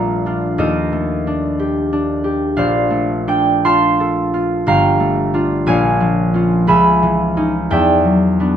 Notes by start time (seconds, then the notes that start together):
Already playing: A#1 A3 A#3 F4 A#4 D5 F5 A#5
0.26 D4 F4
0.58 D#2 A4 A#4 D#5
0.93 A3
1.27 D4
1.59 G4
1.93 D4
2.24 G4
2.56 A#1 C5 D5 F5
2.90 A3
3.27 D4 G5
3.65 F4 F5 A5 C6
4.00 A4
4.34 F4
4.67 G1 F5 G5 A#5
5.00 A3
5.34 D4 F4
5.66 A#1 C#5 F5 G#5
6.00 F3
6.34 C#4 F4
6.67 C#2 E5 G#5 B5
7.03 E3
7.37 C#4 D#4
7.70 E2 D5 E5 G5
8.05 F#3
8.40 B3 D4